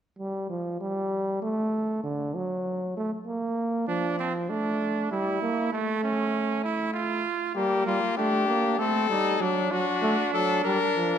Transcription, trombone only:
0.19 0.48 G3 medium
0.50 0.80 F3 medium
0.81 1.41 G3 medium
1.42 2.03 A3 medium
2.04 2.36 D3 medium
2.35 2.96 F#3 medium
2.97 3.11 A3 medium
3.27 3.87 A#3 medium
3.88 4.51 F3 medium
4.50 5.11 A3 medium
5.11 5.41 G3 medium
5.42 5.72 A#3 medium
5.72 7.25 A3 medium
7.56 7.85 G3 medium
7.87 8.00 G3 medium
8.17 8.47 A3 medium
8.48 8.78 A#3 medium
8.79 9.09 A3 medium
9.09 9.40 G3 medium
9.40 9.71 F#3 medium
9.71 9.85 F#3 medium
10.02 10.16 A3 medium
10.34 10.64 F#3 medium
10.65 10.79 G3 medium
10.96 11.18 F3 medium

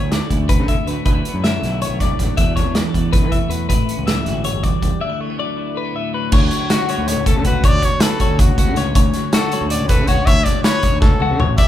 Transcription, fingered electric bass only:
0.03 0.18 D2 medium
0.30 0.61 D2 medium
0.59 0.74 D3 medium
0.87 0.94 D2 medium
1.06 1.21 D2 medium
1.34 1.57 F#2 medium
1.63 1.85 B1 medium
1.89 2.13 B1 medium
2.20 2.27 A1 medium
2.38 2.61 E2 medium
2.66 2.81 E2 medium
2.94 3.24 E2 medium
3.22 3.38 E3 medium
3.49 3.69 E2 medium
3.69 3.85 A1 medium
3.98 4.21 C#2 medium
4.26 4.49 G1 medium
4.54 4.77 G1 medium
4.82 4.90 C#2 medium
6.32 6.48 D2 loud
6.98 7.14 D2 medium
7.17 7.37 C#2 medium
7.35 7.43 D3 medium
7.45 7.61 C#2 medium
7.64 7.79 D2 medium
8.30 8.45 D2 medium
8.48 8.69 C#2 medium
8.67 8.75 D3 medium
8.77 8.93 C#2 medium
8.95 9.11 D2 loud
9.61 9.77 D2 medium
9.81 10.01 C#2 medium
9.99 10.07 D3 medium
10.08 10.24 C#2 medium
10.27 10.43 D2 medium
10.93 11.08 D2 medium
11.11 11.33 C#2 medium
11.31 11.39 D3 medium
11.40 11.55 A1 medium
11.59 11.68 G1 loud

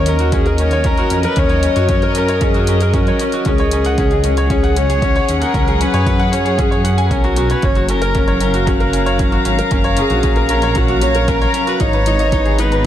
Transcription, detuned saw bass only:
0.00 1.03 D#2 medium
1.11 1.27 F2 medium
1.37 1.68 D#2 medium
1.76 3.11 F#2 loud
3.46 5.20 C#2 loud
5.29 5.44 D#2 medium
5.54 5.85 C#2 medium
5.94 7.10 F#2 loud
7.11 7.55 B1 loud
7.63 9.38 F#1 loud
9.46 9.61 G#1 medium
9.72 10.03 F#1 loud
10.10 11.46 A#1 loud
11.80 12.86 G#1 medium

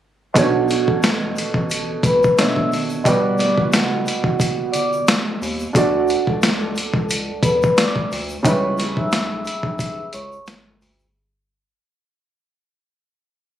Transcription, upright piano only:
0.34 2.33 B2 medium
0.34 2.34 A3 medium
0.34 2.34 D4 medium
0.38 2.35 C#5 medium
2.38 3.03 B2 medium
2.38 3.06 A3 soft
2.38 3.06 D4 medium
2.38 3.06 C#5 medium
3.04 5.70 B2 medium
3.04 5.71 G3 medium
3.04 5.72 F#4 medium
3.08 5.72 B4 medium
5.73 8.40 A3 medium
5.73 8.40 D4 medium
5.73 8.41 F#4 medium
5.77 8.42 D5 medium
8.43 11.09 C#3 medium
8.43 11.10 G3 medium
8.43 11.11 E4 medium
8.47 11.11 B4 medium

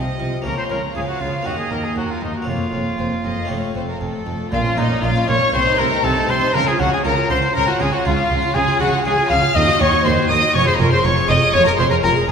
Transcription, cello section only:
0.20 0.28 C3 medium
0.46 0.54 C#3 medium
0.70 0.78 C#3 medium
0.96 1.04 C#3 medium
1.21 1.29 C#3 medium
1.46 1.54 D#2 soft
1.71 1.79 D#2 soft
1.96 2.04 D#2 soft
2.22 2.30 D#2 soft
2.48 2.56 F2 medium
2.73 2.81 F2 soft
2.99 3.07 F2 soft
3.25 3.33 F2 soft
3.50 3.58 F2 soft
3.75 3.83 F2 soft
4.00 4.08 F2 soft
4.26 4.34 F2 soft
4.52 4.60 A#2 medium
4.77 4.85 A#2 medium
5.03 5.11 A#2 medium
5.28 5.36 A#2 medium
5.53 5.61 C3 medium
5.79 5.87 C3 medium
6.04 6.12 C3 medium
6.29 6.37 C3 medium
6.54 6.62 C#3 medium
6.80 6.88 C#3 medium
7.05 7.13 C#3 medium
7.29 7.37 C#3 medium
7.55 7.63 C#3 medium
7.80 7.88 C#3 medium
8.05 8.13 C#3 medium
8.30 8.38 C#3 medium
8.55 8.63 C#3 medium
8.80 8.88 C#3 medium
9.05 9.13 C#3 medium
9.30 9.38 C#3 medium
9.55 9.63 D#2 medium
9.80 9.88 D#2 medium
10.05 10.13 D#2 medium
10.30 10.38 D#2 medium
10.54 10.62 F2 medium
10.79 10.87 F2 medium
11.04 11.12 F2 medium
11.29 11.37 F2 medium
11.54 11.62 F2 medium
11.79 11.87 F2 medium
12.04 12.12 F2 medium
12.29 12.32 F2 medium

